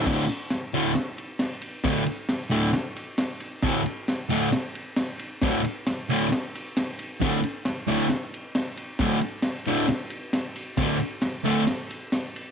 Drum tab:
CC |x-------|--------|--------|--------|
RD |-xxxxxxx|xxxxxxxx|xxxxxxxx|xxxxxxxx|
SD |o-o-o-o-|o-o-o-o-|o-o-o-o-|o-o-o-o-|
BD |o-------|o-------|o-------|o-------|

CC |--------|--------|--------|
RD |xxxxxxxx|xxxxxxxx|xxxxxxxx|
SD |o-o-o-o-|o-o-o-o-|o-o-o-o-|
BD |o-------|o-------|o-------|